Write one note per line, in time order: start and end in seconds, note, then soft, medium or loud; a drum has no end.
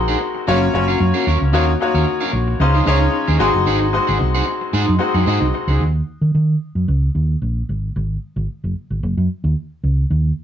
0.00 0.14 A#1 loud
0.00 0.49 G#3 medium
0.00 0.50 C4 medium
0.00 0.49 D#4 medium
0.00 0.49 F#4 medium
0.00 0.50 A#4 medium
0.00 0.50 C5 loud
0.08 0.19 D#4 medium
0.08 0.19 G#4 medium
0.08 0.20 C5 medium
0.08 0.20 F#5 medium
0.20 muted clean electric guitar stroke soft
0.35 muted clean electric guitar stroke soft
0.47 0.68 F#1 loud
0.47 0.69 A#3 medium
0.47 0.67 C#4 medium
0.47 0.69 C#4 medium
0.47 0.69 F4 medium
0.47 0.61 F#4 medium
0.47 0.70 F#4 medium
0.47 0.61 A#4 loud
0.47 0.70 C#5 loud
0.47 0.60 F5 medium
0.61 muted clean electric guitar stroke medium
0.73 0.94 F#1 medium
0.73 1.22 A#3 medium
0.73 1.23 C#4 medium
0.73 1.23 F4 medium
0.73 1.23 F#4 medium
0.73 1.23 C#5 loud
0.73 muted clean electric guitar stroke soft
0.88 0.99 C#4 medium
0.88 1.00 F#4 medium
0.88 1.00 A#4 medium
0.88 1.01 F5 medium
1.00 1.11 F#2 loud
1.00 muted clean electric guitar stroke soft
1.14 1.26 C#4 medium
1.14 1.26 F#4 medium
1.14 1.27 A#4 medium
1.14 1.27 F5 medium
1.27 1.38 D#2 medium
1.27 1.43 C#4 medium
1.27 1.40 F#4 medium
1.27 1.40 A#4 medium
1.27 1.39 F5 medium
1.40 1.54 C#2 medium
1.40 muted clean electric guitar stroke soft
1.53 1.74 D#2 loud
1.53 1.70 A#3 medium
1.53 1.73 C#4 medium
1.53 1.70 D#4 medium
1.53 1.71 F4 medium
1.53 1.68 F#4 medium
1.53 1.71 F#4 medium
1.53 1.67 A#4 medium
1.53 1.71 C#5 medium
1.53 1.66 F5 loud
1.68 muted clean electric guitar stroke medium
1.80 2.45 A#3 medium
1.80 2.46 D#4 medium
1.80 2.46 F4 medium
1.80 2.46 F#4 medium
1.80 2.46 C#5 medium
1.80 muted clean electric guitar stroke soft
1.94 2.04 D#2 loud
1.94 2.06 C#4 medium
1.94 2.06 F#4 medium
1.94 2.06 A#4 medium
1.94 2.07 F5 medium
2.07 muted clean electric guitar stroke soft
2.21 2.32 C#4 medium
2.21 2.33 F#4 medium
2.21 2.33 A#4 medium
2.21 2.33 F5 loud
2.33 2.53 A#1 medium
2.33 muted clean electric guitar stroke soft
2.48 muted clean electric guitar stroke soft
2.60 2.80 C#2 loud
2.60 2.82 G#3 medium
2.60 2.82 C#4 medium
2.60 2.82 D#4 medium
2.60 2.83 F4 medium
2.60 2.83 C5 loud
2.60 muted clean electric guitar stroke soft
2.74 2.85 D#4 medium
2.74 2.85 G#4 medium
2.74 2.86 C5 medium
2.74 2.86 F5 medium
2.86 3.07 C#2 loud
2.86 3.36 G#3 medium
2.86 3.36 C#4 medium
2.86 3.06 D#4 medium
2.86 3.36 D#4 medium
2.86 3.36 F4 medium
2.86 3.01 G#4 medium
2.86 3.00 C5 loud
2.86 3.36 C#5 medium
2.86 3.00 F5 loud
3.01 muted clean electric guitar stroke soft
3.13 muted clean electric guitar stroke soft
3.27 3.37 D#2 loud
3.27 3.39 D#4 medium
3.27 3.39 G#4 medium
3.27 3.40 C5 medium
3.27 3.41 F5 medium
3.39 3.51 G#1 medium
3.39 3.83 G#3 medium
3.39 3.83 C4 medium
3.39 3.83 D#4 medium
3.39 3.55 D#4 medium
3.39 3.83 F#4 medium
3.39 3.54 G#4 medium
3.39 3.84 C5 loud
3.39 3.53 C5 medium
3.39 3.54 G#5 medium
3.54 3.67 F#1 medium
3.54 muted clean electric guitar stroke soft
3.66 3.98 G#1 loud
3.66 3.86 D#4 medium
3.66 3.81 G#4 medium
3.66 3.81 C5 loud
3.66 3.80 F#5 medium
3.81 muted clean electric guitar stroke soft
3.93 4.58 G#3 medium
3.93 4.59 C4 medium
3.93 4.59 D#4 medium
3.93 4.59 F#4 medium
3.93 4.59 C5 loud
3.93 muted clean electric guitar stroke soft
4.07 4.18 G#1 medium
4.07 4.19 D#4 medium
4.07 4.19 G#4 medium
4.07 4.19 C5 medium
4.07 4.20 F#5 medium
4.20 4.41 C2 loud
4.20 muted clean electric guitar stroke soft
4.35 4.46 D#4 medium
4.35 4.46 G#4 medium
4.35 4.47 C5 medium
4.35 4.47 F#5 medium
4.47 muted clean electric guitar stroke medium
4.61 muted clean electric guitar stroke soft
4.73 4.84 G#2 loud
4.73 4.93 D#4 loud
4.73 4.88 G#4 medium
4.73 4.87 C5 loud
4.73 4.87 F#5 loud
4.88 4.98 F#2 medium
4.88 muted clean electric guitar stroke medium
4.99 5.48 G#3 medium
4.99 5.48 C4 medium
4.99 5.49 D#4 medium
4.99 5.49 F#4 medium
4.99 5.49 C5 medium
4.99 5.25 F#5 medium
4.99 muted clean electric guitar stroke medium
5.14 5.24 F#2 medium
5.14 5.25 D#4 soft
5.14 5.26 G#4 medium
5.14 5.26 C5 medium
5.14 5.27 F#5 medium
5.26 5.38 G#2 loud
5.26 5.46 D#4 medium
5.26 5.41 G#4 loud
5.26 5.41 C5 medium
5.26 5.52 D#5 medium
5.26 5.40 F#5 loud
5.41 5.50 C2 loud
5.41 muted clean electric guitar stroke soft
5.54 5.79 C5 medium
5.54 muted clean electric guitar stroke soft
5.67 5.77 C#2 loud
5.67 5.83 D#4 soft
5.67 5.83 G#4 medium
5.67 5.82 C5 medium
5.67 5.82 F#5 medium
5.80 6.00 D#2 medium
6.21 6.31 D#3 medium
6.35 6.54 D#3 medium
6.75 6.85 F#2 medium
6.88 7.08 C#2 medium
7.15 7.35 D#2 medium
7.42 7.62 A#1 medium
7.69 7.89 G#1 medium
7.96 8.16 G#1 loud
8.36 8.46 G#1 medium
8.64 8.73 F#1 medium
8.90 9.00 G#1 medium
9.03 9.14 F#1 loud
9.17 9.27 F#2 medium
9.44 9.53 D#2 medium
9.83 10.03 C#2 medium
10.10 10.30 D#2 medium